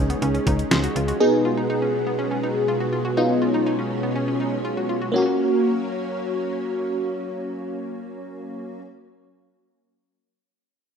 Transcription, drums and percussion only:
0.10 closed hi-hat
0.22 closed hi-hat
0.35 closed hi-hat
0.47 kick, closed hi-hat
0.59 closed hi-hat
0.71 snare, closed hi-hat
0.84 closed hi-hat
0.96 closed hi-hat
1.08 closed hi-hat

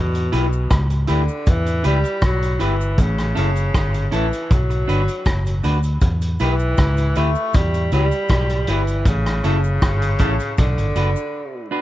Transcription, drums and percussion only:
0.15 closed hi-hat, cabasa
0.32 closed hi-hat, cabasa
0.53 cabasa
0.70 kick, cross-stick, closed hi-hat, cabasa
0.90 closed hi-hat, cabasa
1.07 closed hi-hat, cabasa
1.28 cabasa
1.46 kick, closed hi-hat, cabasa
1.66 closed hi-hat, cabasa
1.84 closed hi-hat, cabasa
2.04 closed hi-hat, cabasa
2.22 kick, cross-stick, closed hi-hat, cabasa
2.42 closed hi-hat, cabasa
2.60 closed hi-hat, cabasa
2.81 cabasa
2.98 kick, closed hi-hat, cabasa
3.18 cross-stick, closed hi-hat, cabasa
3.37 closed hi-hat, cabasa
3.56 closed hi-hat, cabasa
3.74 kick, cross-stick, closed hi-hat, cabasa
3.94 closed hi-hat, cabasa
4.12 closed hi-hat, cabasa
4.33 closed hi-hat, cabasa
4.51 kick, closed hi-hat, cabasa
4.70 closed hi-hat, cabasa
4.89 closed hi-hat, cabasa
5.08 closed hi-hat, cabasa
5.26 kick, cross-stick, closed hi-hat, cabasa
5.46 closed hi-hat, cabasa
5.64 closed hi-hat, cabasa
5.83 closed hi-hat, cabasa
6.01 kick, closed hi-hat, cabasa
6.21 closed hi-hat, cabasa
6.39 closed hi-hat, cabasa
6.59 cabasa
6.77 kick, cross-stick, closed hi-hat, cabasa
6.97 closed hi-hat, cabasa
7.15 closed hi-hat, cabasa
7.35 cabasa
7.53 kick, closed hi-hat, cabasa
7.74 closed hi-hat, cabasa
7.92 closed hi-hat, cabasa
8.11 closed hi-hat, cabasa
8.29 kick, cross-stick, closed hi-hat, cabasa
8.49 closed hi-hat, cabasa
8.67 closed hi-hat, cabasa
8.87 closed hi-hat, cabasa
9.05 kick, closed hi-hat, cabasa
9.26 cross-stick, closed hi-hat, cabasa
9.44 closed hi-hat, cabasa
9.64 cabasa
9.82 kick, cross-stick, closed hi-hat, cabasa
10.02 closed hi-hat, cabasa
10.19 kick, closed hi-hat, cabasa
10.40 closed hi-hat, cabasa
10.58 kick, closed hi-hat, cabasa
10.78 closed hi-hat, cabasa
10.96 closed hi-hat, cabasa
11.16 cabasa

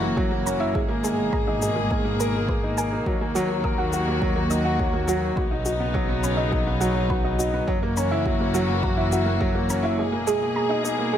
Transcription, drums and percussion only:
0.17 kick
0.47 shaker
0.75 kick
1.04 shaker
1.33 kick
1.62 shaker
1.91 kick
2.20 shaker
2.49 kick
2.78 shaker
3.06 kick
3.35 shaker
3.64 kick
3.93 shaker
4.22 kick
4.50 shaker
4.79 kick
5.08 shaker
5.37 kick
5.65 shaker
5.95 kick
6.23 shaker
6.52 kick
6.81 shaker
7.10 kick
7.39 shaker
7.68 kick
7.97 shaker
8.26 kick
8.54 shaker
8.83 kick
9.12 shaker
9.41 kick
9.69 shaker
10.27 shaker
10.85 shaker

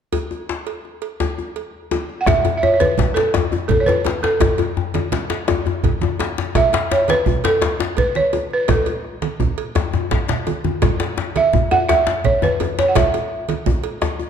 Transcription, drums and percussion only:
0.13 cowbell, djembe bass
0.31 djembe tone
0.49 djembe slap
0.67 cowbell
0.85 djembe slap
1.02 cowbell
1.20 cowbell, djembe slap, djembe bass
1.38 djembe slap, djembe tone
1.56 cowbell
1.91 cowbell, djembe slap, djembe tone
2.10 djembe slap
2.26 bombo rim, bombo low, cowbell, djembe slap, djembe tone, low conga, djembe bass
2.45 cowbell, djembe tone
2.63 djembe tone
2.80 cowbell, djembe slap, high conga, djembe tone
2.98 bombo low, djembe slap, djembe tone, low conga
3.16 cowbell, djembe slap
3.34 bombo rim, cowbell, djembe slap, djembe tone, djembe bass
3.52 djembe tone
3.69 bombo low, cowbell, djembe tone, low conga
3.86 djembe slap, high conga, djembe tone
4.04 cowbell, djembe slap, high conga, djembe tone
4.22 djembe slap, high conga
4.40 bombo rim, bombo low, cowbell, djembe slap, djembe tone, low conga, djembe bass
4.58 cowbell, djembe tone
4.77 djembe tone
4.94 cowbell, djembe slap, high conga, djembe tone
5.12 djembe slap, djembe tone, low conga
5.30 cowbell, djembe slap
5.48 bombo rim, cowbell, djembe slap, djembe tone, djembe bass
5.66 djembe tone
5.83 bombo low, cowbell, djembe tone, low conga
6.01 djembe slap, high conga, djembe tone
6.19 cowbell, djembe slap, djembe tone
6.37 djembe slap, high conga
6.55 bombo rim, bombo low, cowbell, djembe slap, low conga, djembe bass
6.73 cowbell, djembe slap, djembe tone
6.92 djembe slap
7.08 cowbell, djembe slap, high conga
7.26 bombo low, djembe tone, low conga
7.44 cowbell, djembe slap
7.62 bombo rim, cowbell, djembe slap, djembe bass
7.80 djembe slap, djembe tone
7.97 bombo low, cowbell, low conga
8.15 djembe slap, high conga
8.33 cowbell, djembe tone, high conga
8.51 high conga
8.68 bombo rim, bombo low, cowbell, djembe slap, high conga, djembe bass, low conga
8.86 cowbell, djembe slap, djembe tone
9.05 bombo rim
9.22 bombo rim, cowbell, djembe slap, high conga
9.40 bombo rim, bombo low, djembe tone, high conga, low conga
9.58 cowbell
9.75 bombo rim, cowbell, djembe slap, djembe tone, djembe bass
9.93 djembe slap, djembe tone, low conga
10.11 bombo rim, bombo low, cowbell, djembe slap, low conga
10.28 djembe slap, low conga
10.47 bombo rim, cowbell, djembe tone, high conga
10.64 bombo rim, djembe slap, djembe tone, high conga
10.82 bombo rim, bombo low, cowbell, djembe slap, djembe tone, djembe bass, low conga
11.00 cowbell, djembe slap, djembe tone
11.18 djembe slap
11.36 cowbell, djembe slap, high conga
11.53 bombo low, djembe tone, low conga
11.71 cowbell, djembe slap, djembe tone
11.89 bombo rim, cowbell, djembe slap, djembe bass
12.07 djembe slap, djembe tone
12.24 bombo low, cowbell, low conga
12.42 djembe slap, djembe tone, high conga
12.60 cowbell, djembe tone, high conga
12.78 djembe slap, high conga
12.95 bombo rim, bombo low, cowbell, djembe slap, low conga, djembe bass
13.14 cowbell, djembe tone
13.48 cowbell, djembe slap, high conga
13.66 bombo low, djembe tone, low conga
13.84 cowbell, djembe slap
14.02 bombo rim, cowbell, djembe slap, djembe bass
14.19 djembe tone

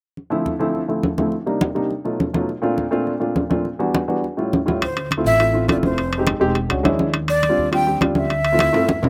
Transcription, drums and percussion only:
0.17 high conga
0.32 high conga
0.46 high conga
0.61 high conga
0.75 high conga
0.90 high conga
1.03 high conga
1.18 high conga
1.32 high conga
1.47 high conga
1.61 high conga
1.76 high conga
1.90 high conga
2.05 high conga
2.20 high conga
2.34 high conga
2.49 high conga
2.63 high conga
2.78 high conga
2.93 high conga
3.07 high conga
3.21 high conga
3.36 high conga
3.51 high conga
3.65 high conga
3.80 high conga
3.95 high conga
4.10 high conga
4.24 high conga
4.39 high conga
4.53 high conga
4.68 high conga
4.82 high conga, high timbale
4.97 high conga, high timbale
5.11 high conga, high timbale
5.26 high conga
5.40 high conga, high timbale
5.55 high conga
5.69 high conga, high timbale
5.83 high conga
5.98 high conga, high timbale
6.13 high conga, high timbale
6.27 high conga, high timbale
6.42 high conga
6.55 high conga, high timbale
6.70 high conga, high timbale
6.85 high conga, high timbale, low timbale
6.99 high conga
7.14 high conga, high timbale
7.28 high conga, high timbale
7.43 high conga, high timbale
7.58 high conga
7.72 high conga, high timbale
7.87 high conga
8.01 high conga, high timbale
8.15 high conga
8.30 high conga, high timbale
8.45 high conga, high timbale
8.59 high conga, high timbale
8.73 high conga, high timbale
8.89 high conga
9.03 low conga, high timbale

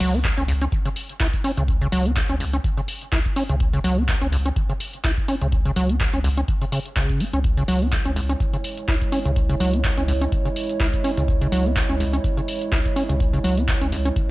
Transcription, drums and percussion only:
0.00 open hi-hat
0.24 kick, clap, closed hi-hat
0.38 closed hi-hat
0.48 open hi-hat
0.61 closed hi-hat
0.72 kick, closed hi-hat
0.85 closed hi-hat
0.96 open hi-hat
1.09 closed hi-hat
1.20 kick, clap, closed hi-hat
1.33 kick, closed hi-hat
1.44 open hi-hat
1.57 closed hi-hat
1.68 kick, closed hi-hat
1.81 closed hi-hat
1.92 open hi-hat
2.05 closed hi-hat
2.16 kick, clap, closed hi-hat
2.29 closed hi-hat
2.40 open hi-hat
2.53 closed hi-hat
2.64 kick, closed hi-hat
2.77 closed hi-hat
2.88 open hi-hat
3.01 closed hi-hat
3.12 kick, clap, closed hi-hat
3.25 kick, closed hi-hat
3.36 open hi-hat
3.49 closed hi-hat
3.60 kick, closed hi-hat
3.73 closed hi-hat
3.84 open hi-hat
4.08 kick, clap, closed hi-hat
4.22 closed hi-hat
4.32 open hi-hat
4.46 closed hi-hat
4.56 kick, closed hi-hat
4.70 closed hi-hat
4.80 open hi-hat
4.93 closed hi-hat
5.04 kick, clap, closed hi-hat
5.17 kick, closed hi-hat
5.28 open hi-hat
5.41 closed hi-hat
5.52 kick, closed hi-hat
5.65 closed hi-hat
5.76 open hi-hat
5.89 closed hi-hat
6.00 kick, clap, closed hi-hat
6.13 closed hi-hat
6.24 open hi-hat
6.37 closed hi-hat
6.48 kick, closed hi-hat
6.62 closed hi-hat
6.72 open hi-hat
6.86 closed hi-hat
6.96 kick, clap, closed hi-hat
7.09 kick, closed hi-hat
7.20 open hi-hat
7.33 closed hi-hat
7.44 kick, closed hi-hat, shaker
7.57 closed hi-hat, shaker
7.68 open hi-hat
7.82 shaker
7.92 kick, clap, closed hi-hat, shaker
8.05 closed hi-hat, shaker
8.16 open hi-hat
8.30 closed hi-hat, shaker
8.40 kick, closed hi-hat, shaker
8.54 closed hi-hat, shaker
8.64 open hi-hat
8.77 closed hi-hat, shaker
8.88 kick, clap, closed hi-hat, shaker
9.01 kick, closed hi-hat, shaker
9.12 open hi-hat
9.25 closed hi-hat, shaker
9.36 kick, closed hi-hat, shaker
9.50 closed hi-hat, shaker
9.60 open hi-hat
9.73 closed hi-hat, shaker
9.84 kick, clap, closed hi-hat, shaker
9.97 closed hi-hat, shaker
10.08 open hi-hat
10.21 closed hi-hat, shaker
10.32 kick, closed hi-hat, shaker
10.45 closed hi-hat, shaker
10.56 open hi-hat
10.69 closed hi-hat, shaker
10.80 kick, clap, closed hi-hat, shaker
10.93 kick, closed hi-hat, shaker
11.04 open hi-hat
11.17 closed hi-hat, shaker
11.28 kick, closed hi-hat, shaker
11.41 closed hi-hat, shaker
11.52 open hi-hat
11.66 shaker
11.76 kick, clap, closed hi-hat, shaker
11.90 closed hi-hat, shaker
12.00 open hi-hat
12.13 closed hi-hat, shaker
12.24 kick, closed hi-hat, shaker
12.37 closed hi-hat, shaker
12.48 open hi-hat
12.61 closed hi-hat, shaker
12.72 kick, clap, closed hi-hat, shaker
12.85 kick, closed hi-hat, shaker
12.96 open hi-hat
13.10 closed hi-hat, shaker
13.20 kick, closed hi-hat, shaker
13.34 closed hi-hat, shaker
13.44 open hi-hat
13.57 closed hi-hat, shaker
13.68 kick, clap, closed hi-hat, shaker
13.81 closed hi-hat, shaker
13.92 open hi-hat
14.05 closed hi-hat, shaker
14.16 kick, closed hi-hat, shaker

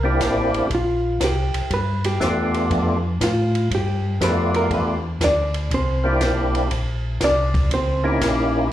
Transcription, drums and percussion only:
0.20 kick, snare, hi-hat pedal, ride
0.54 ride
0.70 kick, ride
1.20 kick, snare, hi-hat pedal, ride
1.54 ride
1.71 kick, ride
2.04 ride
2.21 kick, snare, hi-hat pedal
2.54 ride
2.71 kick, ride
3.21 kick, snare, hi-hat pedal, ride
3.55 ride
3.71 kick, ride
4.21 kick, snare, hi-hat pedal, ride
4.54 ride
4.71 kick, ride
5.21 kick, snare, hi-hat pedal, ride
5.54 ride
5.71 kick, ride
6.21 kick, snare, hi-hat pedal, ride
6.55 ride
6.71 kick, ride
7.21 kick, snare, hi-hat pedal, ride
7.54 kick, ride
7.71 kick, ride
8.21 kick, snare, hi-hat pedal, ride

